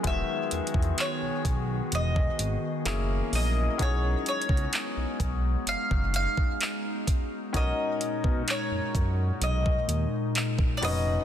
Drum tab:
HH |x-----x-x-x-x-----x-----x-----x-----x-----o-----|x-----x-x-x-x-----x-----x-----x-----x-----x-----|x-----x-----x-----x-----x-----x-----x-----o-----|
CP |------------x-----------------------x-----------|------------x-----------------------x-----------|------------x-----------------------x-----------|
SD |------------------------------------------------|------------------------------------------------|------------------------------------------r-----|
BD |o--------o--------o--------o--------------------|o--------o--------o--------o-----o--------o-----|o--------o--------o--------o-----------o--------|